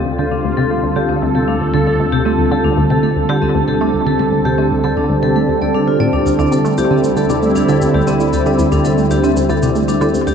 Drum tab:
SH |----------------|----------------|----------------|xxxxx-xxxxxxx-xx|
CG |----------------|----------------|----------------|-o--o---o--o---o|

SH |xxxxxxxxxxxxxxxx|
CG |--o---o--o---o--|